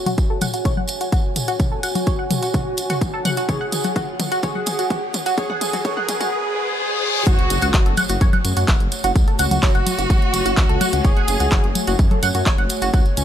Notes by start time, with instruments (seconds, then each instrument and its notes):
Already playing: analog synth lead F#4, analog synth pad F#4 C#5 G#5, riser
0.06 synth arpeggio sound F#4, closed hi-hat, mid tom, tambourine, low conga
0.18 kick, closed hi-hat, tambourine
0.30 synth arpeggio sound A4
0.41 synth arpeggio sound F#5, closed hi-hat, mid tom, tambourine, low conga
0.53 synth arpeggio sound F#4, closed hi-hat, tambourine
0.65 synth arpeggio sound C#5, kick, closed hi-hat, mid tom, tambourine
0.77 synth arpeggio sound F#5, low conga
0.88 closed hi-hat, tambourine
1.01 synth arpeggio sound F#4, closed hi-hat, tambourine
1.12 synth arpeggio sound F#4, kick, closed hi-hat, tambourine
1.36 closed hi-hat, mid tom, tambourine
1.48 synth arpeggio sound F#4, closed hi-hat, tambourine
1.59 kick, closed hi-hat, mid tom, tambourine
1.72 synth arpeggio sound A4
1.83 analog synth lead F#4, synth arpeggio sound F#5, closed hi-hat, tambourine
1.95 synth arpeggio sound F#4, closed hi-hat, tambourine, low conga
2.06 synth arpeggio sound C#5, kick, closed hi-hat, tambourine
2.19 synth arpeggio sound F#5
2.31 closed hi-hat, mid tom, tambourine, low conga
2.43 synth arpeggio sound F#4, closed hi-hat, tambourine
2.54 synth arpeggio sound F#4, kick, closed hi-hat, mid tom, tambourine
2.77 closed hi-hat, tambourine
2.90 synth arpeggio sound F#4, closed hi-hat, mid tom, tambourine
3.01 kick, closed hi-hat, tambourine
3.13 synth arpeggio sound A4
3.25 synth arpeggio sound F#5, closed hi-hat, mid tom, tambourine, low conga
3.37 synth arpeggio sound F#4, closed hi-hat, tambourine
3.49 analog synth lead G#4, synth arpeggio sound C#5, analog synth pad F#5, kick, closed hi-hat, mid tom, tambourine
3.61 synth arpeggio sound F#5
3.72 closed hi-hat, mid tom, tambourine
3.83 synth arpeggio sound F#4, closed hi-hat, tambourine, low conga
3.96 synth arpeggio sound F#4, kick, closed hi-hat, mid tom, tambourine
4.19 closed hi-hat, mid tom, tambourine, low conga
4.32 synth arpeggio sound F#4, closed hi-hat, tambourine
4.43 analog synth lead G#4, synth arpeggio sound C#5, kick, closed hi-hat, mid tom, tambourine
4.55 synth arpeggio sound F#5, low conga
4.66 closed hi-hat, mid tom, tambourine
4.79 synth arpeggio sound F#4, closed hi-hat, tambourine
4.90 synth arpeggio sound F#4, kick, closed hi-hat, mid tom, tambourine
5.14 closed hi-hat, mid tom, tambourine
5.26 synth arpeggio sound F#4, closed hi-hat, tambourine
5.38 analog synth lead G#4, synth arpeggio sound C#5, kick, closed hi-hat, mid tom, tambourine
5.50 synth arpeggio sound F#5, mid tom
5.61 closed hi-hat, mid tom, tambourine
5.73 synth arpeggio sound F#4, closed hi-hat, mid tom, tambourine, low conga
5.85 analog synth lead G#4, synth arpeggio sound C#5, kick, closed hi-hat, mid tom, tambourine
5.97 synth arpeggio sound F#5, mid tom
6.08 closed hi-hat, mid tom, tambourine, low conga
6.21 synth arpeggio sound F#4, closed hi-hat, mid tom, tambourine
6.32 analog synth lead G#4, reverse cymbal
6.56 analog synth lead G#4
6.79 analog synth lead G#4
7.03 analog synth lead G#4
7.27 detuned saw bass F#1, analog synth pad A3 F#4 C#5, violin section F#4, synth arpeggio sound F#4, analog synth lead F#4, kick, closed hi-hat, tambourine, impact
7.39 closed hi-hat
7.50 detuned saw bass F#1, closed hi-hat, tambourine
7.61 detuned saw bass C#2, synth arpeggio sound F#4, closed hi-hat, tambourine
7.74 detuned saw bass F#1, kick, clap, closed hi-hat, tambourine
7.86 detuned saw bass F#1, synth arpeggio sound A4, closed hi-hat
7.97 synth arpeggio sound F#5, closed hi-hat, tambourine, low conga
8.09 detuned saw bass F#1, synth arpeggio sound F#4, closed hi-hat, tambourine
8.21 detuned saw bass F#2, synth arpeggio sound C#5, kick, closed hi-hat, tambourine
8.33 synth arpeggio sound F#5, closed hi-hat, low conga
8.44 detuned saw bass F#2, closed hi-hat, tambourine
8.57 detuned saw bass F#2, synth arpeggio sound F#4, closed hi-hat, tambourine
8.68 detuned saw bass F#1, synth arpeggio sound F#4, kick, clap, closed hi-hat, tambourine
8.80 detuned saw bass F#1, closed hi-hat
8.92 closed hi-hat, tambourine
9.04 detuned saw bass F#1, synth arpeggio sound F#4, closed hi-hat, tambourine
9.16 detuned saw bass C#2, kick, closed hi-hat, tambourine
9.28 synth arpeggio sound A4, closed hi-hat
9.39 detuned saw bass C#2, analog synth lead F#4, violin section F#4, synth arpeggio sound F#5, closed hi-hat, tambourine
9.51 detuned saw bass C#2, synth arpeggio sound F#4, closed hi-hat, tambourine, low conga
9.63 detuned saw bass F#1, synth arpeggio sound C#5, kick, clap, closed hi-hat, tambourine
9.75 detuned saw bass F#1, synth arpeggio sound F#5, closed hi-hat
9.87 closed hi-hat, tambourine, low conga
9.98 detuned saw bass F#1, synth arpeggio sound F#4, closed hi-hat, tambourine
10.10 detuned saw bass F#1, synth arpeggio sound F#4, kick, closed hi-hat, tambourine
10.22 closed hi-hat
10.34 detuned saw bass F#1, closed hi-hat, tambourine
10.45 detuned saw bass F#1, synth arpeggio sound F#4, closed hi-hat, tambourine
10.57 detuned saw bass C#2, kick, clap, closed hi-hat, tambourine
10.69 detuned saw bass C#2, synth arpeggio sound A4, closed hi-hat
10.81 synth arpeggio sound F#5, closed hi-hat, tambourine, low conga
10.93 detuned saw bass C#2, synth arpeggio sound F#4, closed hi-hat, tambourine
11.04 detuned saw bass F#1, analog synth lead G#4, violin section G#4, synth arpeggio sound C#5, kick, closed hi-hat, tambourine
11.17 synth arpeggio sound F#5, closed hi-hat
11.28 detuned saw bass F#1, closed hi-hat, tambourine
11.39 detuned saw bass C#2, synth arpeggio sound F#4, closed hi-hat, tambourine
11.51 detuned saw bass F#1, synth arpeggio sound F#4, kick, clap, closed hi-hat, tambourine
11.64 detuned saw bass F#1, closed hi-hat
11.75 closed hi-hat, tambourine, low conga
11.87 detuned saw bass F#1, synth arpeggio sound F#4, closed hi-hat, tambourine
11.99 detuned saw bass F#2, kick, closed hi-hat, tambourine
12.11 synth arpeggio sound A4, closed hi-hat, low conga
12.23 detuned saw bass F#2, synth arpeggio sound F#5, closed hi-hat, tambourine
12.35 detuned saw bass F#2, synth arpeggio sound F#4, closed hi-hat, tambourine
12.46 detuned saw bass F#1, synth arpeggio sound C#5, kick, clap, closed hi-hat
12.58 detuned saw bass F#1, synth arpeggio sound F#5, closed hi-hat
12.69 closed hi-hat, tambourine
12.82 detuned saw bass F#1, synth arpeggio sound F#4, closed hi-hat, tambourine
12.94 detuned saw bass C#2, synth arpeggio sound F#4, kick, closed hi-hat, tambourine
13.06 closed hi-hat
13.17 detuned saw bass C#2, analog synth lead C#4, violin section C#4, closed hi-hat, tambourine